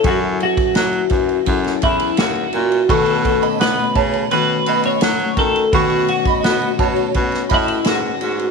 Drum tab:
RD |x-xxxxxxxxxxxxxx|xxxxxxxxx-xxxxxx|xxxxxxxxxxxxx-xx|
SD |----o----o--o---|----o-------o---|----o----o--o---|
BD |o--o--o-o-o-----|o-o---o-------o-|o--o--o-o-o-----|